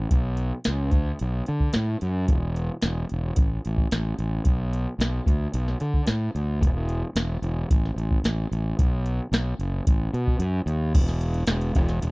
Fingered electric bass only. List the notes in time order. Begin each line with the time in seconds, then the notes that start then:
0.11 B1
0.67 C#2
0.92 D2
1.21 B1
1.49 D3
1.75 A2
2.02 F#2
2.28 E1
2.83 E1
3.12 E1
3.37 A1
3.66 A1
3.92 A1
4.19 A1
4.46 B1
4.99 B1
5.26 D2
5.54 B1
5.81 D3
6.08 A2
6.35 D2
6.61 E1
7.15 E1
7.42 E1
7.71 A1
7.96 A1
8.24 A1
8.51 A1
8.79 B1
9.32 B1
9.59 F#1
9.87 A1
10.13 B2
10.39 F#2
10.66 D#2
10.95 E1
11.48 E1
11.75 E1
12.03 E1